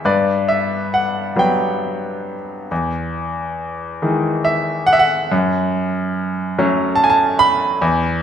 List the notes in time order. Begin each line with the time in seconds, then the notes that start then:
0.05 G2 B4 D5
0.48 E5
0.94 F#5
1.36 F#3 G3 B3 G5
2.71 E2
4.02 D#3 E3 G#3
4.45 E5
4.87 F#5
4.93 E5
4.99 F#5
5.32 F#2
6.59 F#3 A3 C#4
6.96 A5
7.04 G#5
7.10 A5
7.39 B5
7.82 E2